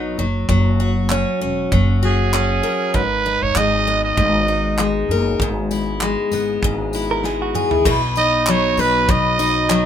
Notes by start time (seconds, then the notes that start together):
Already playing: B1 B2 F#3 B3 D#4
0.17 F#1 F#3
0.49 F#1 F#3, kick
0.80 F#4
1.10 C#4, clap
1.41 E1 C#4
1.72 F#1 F#3, kick
2.03 F#4 G#4
2.34 C#4, clap
2.63 A#4
2.94 G#1 G#2 B4, kick
3.26 D#4
3.42 G#1 C#5
3.55 G#1 G#3 D#5, clap
3.88 B3
4.04 D#5
4.17 G#1 G#2, kick
4.48 D#4
4.78 G#3, clap
5.09 F#1 A#4
5.40 G#1 G#2, kick
5.71 E4, tambourine
6.01 G#3, clap
6.32 G#1 B3, tambourine
6.62 G#1 G#2, kick
6.93 E4, tambourine
7.11 A#4
7.24 G#3 G#4, snare
7.42 F#4
7.55 G#4, mid tom
7.71 E4, floor tom
7.85 B1 B2 B4, kick, crash
8.16 D#4 D#5, tambourine
8.47 F#3 C#5, clap
8.77 B1 B4, tambourine
9.09 B1 B2 D#5, kick
9.39 D#4, tambourine
9.70 F#3, clap